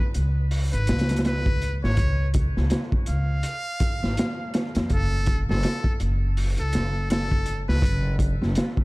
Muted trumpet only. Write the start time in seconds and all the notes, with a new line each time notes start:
Already playing: B4
0.74 B4
1.27 B4
1.84 C#5
3.08 F5
4.92 A4
5.50 A4
6.60 A4
7.11 A4
7.69 B4